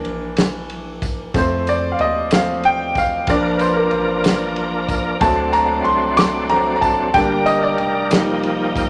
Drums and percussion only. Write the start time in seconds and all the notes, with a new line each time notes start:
0.05 ride
0.37 snare, ride, tambourine
0.70 ride
1.02 kick, ride, tambourine
1.34 kick, ride, tambourine
1.67 ride, tambourine
1.99 ride
2.31 snare, ride, tambourine
2.63 ride
2.95 kick, ride, tambourine
3.27 kick, ride, tambourine
3.59 ride, tambourine
3.91 ride
4.24 snare, ride, tambourine
4.56 ride
4.89 kick, ride, tambourine
5.21 kick, ride, tambourine
5.53 ride, tambourine
5.85 ride
6.17 snare, ride, tambourine
6.49 ride
6.82 kick, ride, tambourine
7.14 kick, ride, tambourine
7.46 ride, tambourine
7.78 ride
8.11 snare, ride, tambourine
8.43 ride
8.76 kick, ride, tambourine